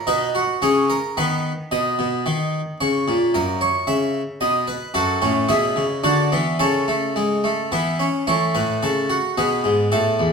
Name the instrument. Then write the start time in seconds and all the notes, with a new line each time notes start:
harpsichord
0.07 B2 D#4 B4
0.35 F#4
0.62 C#3 C#4 G#4
0.90 A#4
1.17 D#3 B3 B4
1.72 B2 D#5
1.99 B2
2.26 D#3
2.81 C#3 C#5
3.08 A#2
3.34 F#2 A#4
3.61 C#5
3.87 C#3 E5
4.41 B2 D#5
4.68 B4
4.94 F#2 F#4 A4
5.22 A2 C#4
5.49 B2 E4 G#4
5.76 C#3
6.04 D3 D4 F#4
6.32 E3 B3
6.59 C#3 C#4 A4
6.88 A3
7.16 G#3
7.44 A3
7.72 E3 B3 E4
8.00 C#4
8.27 E3 A3 C#5
8.55 A2 B4
8.83 C#3 A4
9.10 F#4
9.38 B2 B3 G#4
9.64 G#2
9.92 A2 A4
10.19 E2